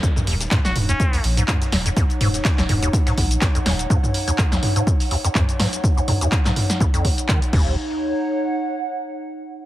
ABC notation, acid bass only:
X:1
M:4/4
L:1/16
Q:"Swing 16ths" 1/4=124
K:Ebm
V:1 name="Acid bass" clef=bass
E,, F,, E,, z A,, z2 E,, F,, E,, z A,, z2 E,, F,, | E,, z A,, z2 E,, F,, E,, z A,, z2 E,, F,, E,, z | A,, z2 E,, F,, E,, z A,, z2 E,, F,, E,, z A,, z | z E,, F,, E,, z A,, z2 E,, F,, E,, z E, z E,,2 |
z16 |]